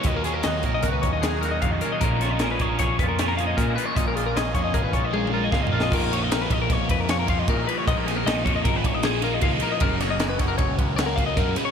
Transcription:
<<
  \new Staff \with { instrumentName = "Clean electric guitar" } { \time 5/4 \key bes \phrygian \tempo 4 = 154 ees''16 bes'16 aes'16 bes'16 ees''8 des''16 ees''16 bes'16 ces''16 des''16 ees''16 aes'8 bes'16 ees''16 f''16 ees''16 bes'16 ees''16 | bes'8 des''16 ees''16 bes'16 ces''16 des''16 bes'16 des''8 ces''16 bes'16 des''16 bes'16 f''16 ees''16 bes'8 ces''16 des''16 | ees''16 bes'16 aes'16 bes'16 ees''8 des''16 ees''16 bes'16 ces''16 des''16 ees''16 aes'8 bes'16 ees''16 f''16 ees''16 bes'16 ees''16 | bes'8 des''16 ees''16 bes'16 ces''16 ees''16 bes'16 des''8 ces''16 bes'16 des''16 bes'16 f''16 ees''16 bes'8 ces''16 des''16 |
ees''16 bes'16 aes'16 bes'16 ees''8 des''16 ees''16 bes'16 ces''16 des''16 ees''16 aes'8 bes'16 ees''16 f''16 ees''16 bes'16 ees''16 | bes'8 des''16 ees''16 bes'16 ces''16 des''16 bes'16 des''8 ces''16 bes'16 des''16 bes'16 f''16 ees''16 bes'8 ces''16 des''16 | }
  \new Staff \with { instrumentName = "Clean electric guitar" } { \time 5/4 \key bes \phrygian << { r8 des'8 ges'8 bes'8 ges'8 des'4 ges'4 des'8 | r8 f'8 aes'8 aes'8 aes'8 f'4 aes'4 f'8 | r8 f'8 aes'8 aes'8 aes'8 f'4 f'16 aes'8. f'8 | r1 r4 |
r1 r4 | r1 r4 | } \\ { <ees, ees>4 ees4. bes,4. ees,4 | bes,4 des'4. bes,4. bes,4 | bes,4 des'4. bes,4. bes,4~ | bes,1~ bes,4 |
r1 r4 | r1 r4 | } >> }
  \new Staff \with { instrumentName = "Overdriven electric guitar" } { \time 5/4 \key bes \phrygian <ees, bes, ees ges bes ees'>8 <ees ges bes ees'>8 <ees, bes, ees ges bes ees'>8 <ees ges bes ees'>4. <ees ges bes ees'>8 <ees ges bes ees'>8 <ees, bes, ees ges bes ees'>8 <ees ges bes ees'>8 | <bes, f bes des' f'>8 <bes des' f'>8 <bes, f bes des' f'>8 <bes des' f'>4. <f bes des' f'>8 <bes des' f'>8 <bes, f bes des' f'>8 <bes des' f'>8 | <bes, f bes des' f'>8 <bes des' f'>8 <bes, f bes des' f'>8 <bes des' f'>4. <f bes des' f'>8 <bes des' f'>8 <bes, f bes des' f'>8 <bes des' f'>8 | <bes, f bes ees' f'>8 <bes ees' f'>8 <bes, f bes ees' f'>8 <bes ees' f'>4. <f bes ees' f'>8 <bes ees' f'>8 <bes, f bes ees' f'>8 <bes ees' f'>8 |
<bes, f bes ees' f'>8 <bes ees' f'>8 <bes, f bes ees' f'>8 <bes ees' f'>4. <f bes ees' f'>8 <bes ees' f'>8 <bes, f bes ees' f'>8 <bes ees' f'>8 | <ges, des ges bes des' ges'>8 <ges bes des' ges'>8 <ges, des ges bes des' ges'>8 <ges bes des' ges'>4. <ges bes des' ges'>8 <ges bes des' ges'>8 <ges, des ges bes des' ges'>8 <ges bes des' ges'>8 | }
  \new Staff \with { instrumentName = "Picked electric bass" } { \clef bass \time 5/4 \key bes \phrygian ees,4 ees,8 bes,,8 des,8 ees,4. f,8 r8 | bes,,4. bes,,8 bes,,8 f,4. bes,8 r8 | bes,,4 bes,,8 f,8 aes,,8 bes,,4. des,8 bes,,8 | bes,,4. bes,,8 bes,,8 f,4. bes,8 r8 |
bes,,4 bes,,8 f,8 aes,,8 bes,,4. des,8 r8 | ges,,4. ges,,8 ges,,8 des,4. ges,8 r8 | }
  \new DrumStaff \with { instrumentName = "Drums" } \drummode { \time 5/4 <hh bd>8 hh8 <hh sn>8 <hh bd>8 <hh bd sn>8 <hh bd>8 <hh sn>8 <hh sn>8 <hh bd>8 hh8 | <hh bd>8 <hh sn>8 <hh sn>8 <hh bd>8 <hh bd sn>8 <hh bd>8 <hh sn>8 hh8 <hh bd sn>8 hh8 | <hh bd>8 hh8 <hh sn>8 <hh bd>8 <hh bd>8 <hh bd>8 \tuplet 3/2 { tommh8 tommh8 r8 <bd sn>8 tomfh8 sn8 } | <cymc bd>8 cymr8 <cymr sn>8 <bd cymr>8 <bd cymr sn>8 <bd cymr>8 <cymr sn>8 <bd cymr>8 <bd cymr>8 cymr8 |
<bd cymr>8 <cymr sn>8 <cymr sn>8 <bd cymr>8 <bd cymr>8 <bd cymr>8 <cymr sn>8 <cymr sn>8 <bd cymr>8 cymr8 | <bd cymr>8 <cymr sn>8 <cymr sn>8 <bd cymr sn>8 <bd cymr>8 <bd cymr>8 <cymr sn>8 <bd cymr>8 <bd cymr sn>8 <cymr sn>8 | }
>>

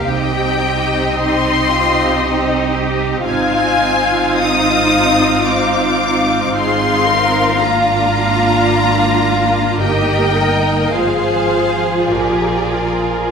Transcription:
<<
  \new Staff \with { instrumentName = "Violin section" } { \time 3/4 \key bes \mixolydian \tempo 4 = 55 g''4 c'''4. r8 | aes''4 ees'''4 d'''4 | c'''4 bes''2 | g''4 f''4 d''4 | }
  \new Staff \with { instrumentName = "Violin section" } { \time 3/4 \key bes \mixolydian << { ees''2. | f''2. | f''2. | ees''4 c''4 bes'4 | } \\ { g'2. | f'2. | f'2. | bes'4 aes'2 | } >> }
  \new Staff \with { instrumentName = "Cello section" } { \time 3/4 \key bes \mixolydian g'4 ees'8 f'8 ees'8 g'8 | f'4 ees'4 f'4 | aes'8 bes'8 f'2 | g'8 bes'8 aes'4 g'8 f'8 | }
  \new Staff \with { instrumentName = "Viola section" } { \time 3/4 \key bes \mixolydian << { ees'2. | ees'2.~ | ees'4 d'2 | ees'4 f'2 | } \\ { c'2. | c'2.~ | c'4 bes2~ | bes4 f2 | } >> }
  \new Staff \with { instrumentName = "Double bass section" } { \clef bass \time 3/4 \key bes \mixolydian c,2. | aes,,2. | aes,,2. | g,,4 aes,,4 bes,,4 | }
>>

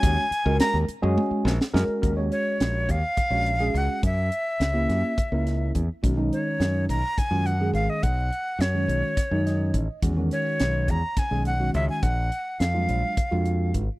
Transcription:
<<
  \new Staff \with { instrumentName = "Flute" } { \time 7/8 \key ees \minor \tempo 4 = 105 aes''4 bes''8 r2 | r8 des''4 f''4. ges''8 | fes''2. r8 | r8 cis''4 bes''8 gis''8 fis''8 f''16 dis''16 |
fis''4 cis''2 r8 | r8 cis''4 bes''8 gis''8 ges''8 e''16 gis''16 | ges''4 f''2 r8 | }
  \new Staff \with { instrumentName = "Tine electric piano" } { \time 7/8 \key ees \minor << { r2. r8 | r2. r8 | r2. r8 | r2. r8 |
r2 r8 dis''4 | r2. r8 | r2. r8 | } \\ { <aes des' ges' des''>16 r8 <aes des' ges' bes'>8. r16 <aes des' ges' aes'>8. r8 <aes des' ges' bes'>8 | <aes des' ges' bes'>16 <aes des' ges' des''>4. r8 <aes des' ges' des''>16 r16 <aes des' ges' aes'>8. | r4 r16 <bes des' fes' g'>8. r16 <bes des' fes' bes'>8. r8 | <dis gis cis' fis'>16 <dis gis cis' dis'>4. r8 <dis gis cis' f'>16 r16 <dis gis cis' gis'>8. |
r4 r16 <dis gis cis' fis'>8. r16 <dis gis cis' dis'>8. r8 | <ees gis cis' ges'>16 <ees gis cis' ges'>4. r8 <ees gis cis' gis'>16 r16 <ees gis cis' ges'>8. | r4 r16 <ges aes d' f'>8. r16 <aes d' f' ges'>8. r8 | } >> }
  \new Staff \with { instrumentName = "Fingered electric bass" } { \clef bass \time 7/8 \key ees \minor ees,16 r8 des,16 r16 ees,16 r16 ges,16 r8 bes,,16 r16 ges,16 r16 | ees,8 r8 bes,,8 ees,16 r8 bes,,8. des,16 r16 | ges,8 r8 des,8 ges,16 r8 des,8. fes,16 r16 | b,,8 r8 fis,8 b,,16 r8 fis,8. gis,,16 r16 |
b,,8 r8 fis,8 b,,16 r8 fis,8. a,,16 r16 | e,8 r8 b,,8 e,16 r8 b,,8. cis,16 r16 | bes,,8 r8 f,8 bes,,16 r8 f,8. aes,,16 r16 | }
  \new DrumStaff \with { instrumentName = "Drums" } \drummode { \time 7/8 <hh bd>8 hh8 <hh sn>8 hh8 tommh8 sn16 sn16 sn8 | <hh bd>8 hh8 <hh sn>8 <hh bd>8 <hh bd>8 hh8 hh8 | <hh bd>8 hh8 <hh sn>8 <hh sn>8 <hh bd>8 <hh sn>8 <hh bd>8 | <hh bd>8 hh8 <hh sn>8 <hh bd>8 <hh bd>8 hh8 hh8 |
<hh bd>8 hh8 <hh sn>8 hh8 <hh bd sn>8 <hh sn>8 <hh bd>8 | <hh bd>8 hh8 <hh sn>8 <hh bd>8 <hh bd sn>8 hh8 hh8 | <hh bd>8 hh8 <hh sn>8 hh8 <hh bd>8 hh8 <hh bd>8 | }
>>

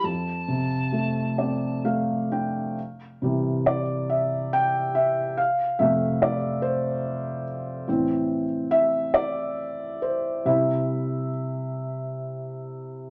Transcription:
<<
  \new Staff \with { instrumentName = "Tin whistle" } { \time 3/4 \key c \major \tempo 4 = 69 a''2 r4 | r2. | r2. | r2. |
r2. | }
  \new Staff \with { instrumentName = "Felt piano" } { \time 3/4 \key c \major r4. d''8 f''8 g''8 | r4 d''8 e''8 g''8 e''8 | f''8 e''8 d''8 c''4 r8 | r4 e''8 d''4 c''8 |
e''4 r2 | }
  \new Staff \with { instrumentName = "Felt piano" } { \clef bass \time 3/4 \key c \major f,8 c8 a8 c'8 a8 d'8 | r8 <c e g>8 r2 | r8 <f, c a>8 r2 | <a, e c'>8 r2 r8 |
<c g e'>2. | }
>>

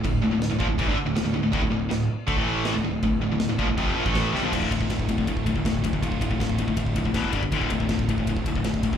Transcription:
<<
  \new Staff \with { instrumentName = "Distorted electric guitar" } { \clef bass \time 4/4 \key d \minor \tempo 4 = 160 <d, a,>8 <d, a,>16 <d, a,>8 <d, a,>16 <bes, f>16 <d, a,>16 <a, e>16 <g, d>16 r16 <d, a,>16 <d, a,>16 <d, a,>16 <d, a,>16 <d, a,>16 | <d, a,>16 <d, a,>16 <d, a,>8 <d, a,>8 r8 <d a>16 <a, e a>4 <d, a,>16 <d, a,>8 | <d, a,>8 <d, a,>16 <d, a,>8 <d, a,>16 <bes, f>16 <d, a,>16 <f, c f>8 <bes, f>16 <a, e a>8. <c g>16 <bes, f>16 | <d, a, d>8 <d, a,>16 <d, a,>16 <d, a,>8 <d, a,>16 <d, a,>16 <d, a,>8 <d, a,>16 <d, a,>16 <d, a,>8 <d, a,>16 <d, a,>16 |
<d, a,>8 <d, a,>16 <d, a,>16 <d, a,>8 <d, a,>16 <d, a,>16 <d, a,>8 <d, a,>16 <d, a,>16 <e, b, e>8 <g, d g>16 <g, d>16 | <d, a, d>8 <d, a,>16 <d, a,>16 <d, a,>8 <d, a,>16 <d, a,>16 <d, a,>8 <d, a,>16 <d, a,>16 <d, a,>8 <d, a,>16 <d, a,>16 | }
  \new Staff \with { instrumentName = "Distorted electric guitar" } { \clef bass \time 4/4 \key d \minor <d, a,>8 <d, a,>16 <d, a,>8 <d, a,>16 <bes, f>16 <d, a,>16 <a, e>16 <g, d>16 r16 <d, a,>16 <d, a,>16 <d, a,>16 <d, a,>16 <d, a,>16 | <d, a,>16 <d, a,>16 <d, a,>8 <d, a,>8 r8 <d a>16 <a, e a>4 <d, a,>16 <d, a,>8 | <d, a,>8 <d, a,>16 <d, a,>8 <d, a,>16 <bes, f>16 <d, a,>16 <f, c f>8 <bes, f>16 <a, e a>8. <c g>16 <bes, f>16 | r1 |
r1 | r1 | }
  \new Staff \with { instrumentName = "Overdriven electric guitar" } { \clef bass \time 4/4 \key d \minor <d, a,>8 <d, a,>16 <d, a,>8 <d, a,>16 <bes, f>16 <d, a,>16 <a, e>16 <g, d>16 r16 <d, a,>16 <d, a,>16 <d, a,>16 <d, a,>16 <d, a,>16 | <d, a,>16 <d, a,>16 <d, a,>8 <d, a,>8 r8 <d a>16 <a, e a>4 <d, a,>16 <d, a,>8 | <d, a,>8 <d, a,>16 <d, a,>8 <d, a,>16 <bes, f>16 <d, a,>16 <f, c f>8 <bes, f>16 <a, e a>8. <c g>16 <bes, f>16 | <d, a, d a f'>1 |
<d, a, d a f'>2. r4 | <d, a, d a f'>1 | }
  \new Staff \with { instrumentName = "Picked electric bass" } { \clef bass \time 4/4 \key d \minor d,,8 d,,16 d,,8 d,,16 bes,,16 d,,16 a,,16 g,,16 r16 d,,16 d,,16 d,,16 d,,16 d,,16 | d,,16 d,,16 d,,8 d,,8 r8 d,16 a,,4 d,,16 d,,8 | d,,8 d,,16 d,,8 d,,16 bes,,16 d,,16 f,,8 bes,,16 a,,8. c,16 bes,,16 | d,,4 d,,8 d,,8 d,,8 d,,8 d,,8 d,,8 |
d,,4 d,,8 d,,8 d,,8 f,,8 e,,8 g,,8 | d,,4 d,,8 d,,8 d,,8 d,,8 d,,8 d,,8 | }
  \new DrumStaff \with { instrumentName = "Drums" } \drummode { \time 4/4 <cymc bd>4 <cymc sn>8 bd8 <cymc bd>4 <cymc sn>4 | <cymc bd>4 <cymc sn>4 <cymc bd>4 <cymc sn>4 | <cymc bd>4 <cymc sn>8 bd8 <cymc bd>8. bd16 <cymc sn>8 sn8 | <cymc bd>16 bd16 <bd cymr>16 bd16 <bd cymr sn>16 bd16 <bd cymr>16 bd16 <bd cymr>16 bd16 <bd cymr>16 bd16 <bd cymr sn>16 bd16 <bd cymr>16 bd16 |
<bd cymr>16 bd16 <bd cymr>16 bd16 <bd cymr sn>16 bd16 <bd cymr>16 bd16 <bd cymr>16 bd16 <bd cymr>16 bd16 <bd cymr sn>16 bd16 <bd cymr>16 bd16 | <bd cymr>16 bd16 <bd cymr>16 bd16 <bd cymr sn>16 bd16 <bd cymr>16 bd16 <bd cymr>16 bd16 <bd cymr>16 bd16 <bd cymr sn>16 bd16 <bd cymr>16 bd16 | }
>>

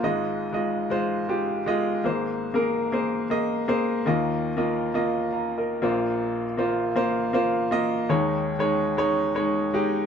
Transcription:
<<
  \new Staff \with { instrumentName = "Upright piano" } { \time 4/4 \key ees \mixolydian \tempo 4 = 119 << { r1 | r1 | r2 r8 <f'' bes''>8 <bes' ees''>4 | r1 |
r1 | } \\ { <aes f' ees''>8. r16 <aes f' ees''>8 r16 <aes f' c''>8 r16 <aes f' g'>8 r16 <aes f' ees''>8 r16 | <bes aes' c''>8. r16 <bes aes' bes'>8 r16 <bes aes' c''>8 r16 <bes aes' ees''>8 r16 <bes aes' c''>8 r16 | <bes f' ees''>8. r16 <bes f' ees''>8 r16 <bes f' ees''>8 r4 r16 <bes f' c''>8~ | <bes f' c''>8. r16 <bes f' c''>8 r16 <bes f' c''>8 r16 <bes f' c''>8 r16 <bes f' ees''>8 r16 |
<aes ees' des''>8. r16 <aes ees' des''>8 r16 <aes ees' des''>8 r16 <aes ees' des''>8 r16 <aes ees' g'>8 r16 | } >> }
  \new Staff \with { instrumentName = "Upright piano" } { \clef bass \time 4/4 \key ees \mixolydian <aes,, aes,>1 | <aes,, aes,>1 | <ees, ees>2.~ <ees, ees>8 <bes,, bes,>8~ | <bes,, bes,>2.~ <bes,, bes,>8 r8 |
<ees, ees>1 | }
>>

